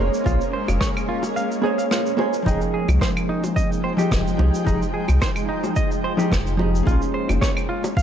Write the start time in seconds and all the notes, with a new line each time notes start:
Already playing: G#3 A#3 C#4
0.00 G#4 C5 C#5
0.14 shaker
0.24 A#1 A#3 F4 G#4 C5 C#5, kick, shaker
0.41 shaker
0.53 C5
0.68 F1, high bongo, claves, shaker
0.81 C#5, kick, cross-stick, shaker
0.97 claves, shaker
1.09 F4
1.23 high bongo, shaker
1.36 F5, shaker
1.52 shaker
1.62 A#3 G#4 C5 C#5
1.78 F5, shaker
1.91 F4, cross-stick, shaker
2.06 shaker
2.17 A#3 G#4 C5, high bongo
2.21 C#5
2.33 shaker
2.42 F1 F3 G#3 D#4 G5, kick
2.46 D#4 G#4 G5, shaker
2.61 shaker
2.74 G#4
2.88 C2, high bongo, claves, shaker
3.01 C5, kick, cross-stick, shaker
3.17 claves, shaker
3.29 D#4
3.44 high bongo, shaker
3.56 D#5, kick, shaker
3.72 shaker
3.84 C5
3.97 F3 G#3 D#4 G4, shaker
4.11 F1, kick, cross-stick, shaker
4.27 shaker
4.37 C2 F3 D#4 G4 G#4, high bongo
4.54 shaker
4.64 F1 F3 D#4 G4 G#4, kick, shaker
4.82 shaker
4.94 G#4
5.08 C2, high bongo, claves, shaker
5.21 C5, kick, cross-stick, shaker
5.36 claves, shaker
5.49 D#4
5.64 high bongo, shaker
5.76 D#5, kick, shaker
5.91 shaker
6.04 C5
6.17 F3 D#4 G4 G#4, shaker
6.32 F1, kick, cross-stick, shaker
6.47 shaker
6.57 F3 D#4 G4 G#4, high bongo
6.75 shaker
6.83 A#1 A#3 G#4, kick
6.87 G#3 A#3 C#4 F4 C6, shaker
7.02 shaker
7.14 C5
7.29 F1, high bongo, claves, shaker
7.41 C#5, kick, cross-stick, shaker
7.57 claves, shaker
7.69 F4
7.84 high bongo, shaker
7.97 F5, kick, shaker